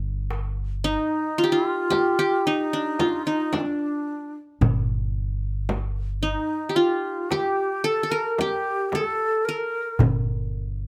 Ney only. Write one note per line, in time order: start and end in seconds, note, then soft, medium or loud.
0.85 1.54 D#4 medium
1.53 2.47 F4 medium
2.46 3.25 D#4 medium
3.25 3.57 D#4 medium
3.55 3.62 D4 medium
3.60 3.67 C4 soft
3.66 4.34 D4 medium
6.22 6.77 D#4 medium
6.76 7.32 F4 medium
7.30 7.87 G4 medium
7.85 8.12 A4 medium
8.11 8.40 A#4 medium
8.39 8.91 G4 medium
8.90 9.47 A4 medium
9.45 9.53 A#4 medium
9.51 9.59 A4 medium
9.57 9.99 A#4 medium